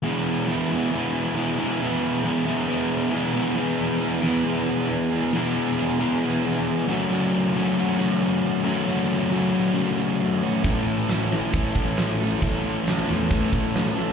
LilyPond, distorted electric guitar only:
\new Staff \with { instrumentName = "Distorted electric guitar" } { \time 4/4 \key e \major \tempo 4 = 136 <e gis b e' gis'>4 <e gis b e' gis'>8 <e gis b e' gis'>8 <e gis b e' gis'>4 <e gis b e' gis'>8 <e gis b e' gis'>8 | <e gis b e' gis'>4 <e gis b e' gis'>8 <e gis b e' gis'>8 <e gis b e' gis'>4 <e gis b e' gis'>8 <e gis b e' gis'>8 | <e b e' gis'>4. <e b e' gis'>2~ <e b e' gis'>8 | <e b e' gis'>4. <e b e' gis'>2 <fis a cis' fis'>8~ |
<fis a cis' fis'>4 <fis a cis' fis'>2~ <fis a cis' fis'>8 <fis a cis' fis'>8~ | <fis a cis' fis'>4 <fis a cis' fis'>2~ <fis a cis' fis'>8 r8 | <a, e a cis' e'>4. <a, e a cis' e'>2~ <a, e a cis' e'>8 | <a, e a cis' e'>4. <a, e a cis' e'>2~ <a, e a cis' e'>8 | }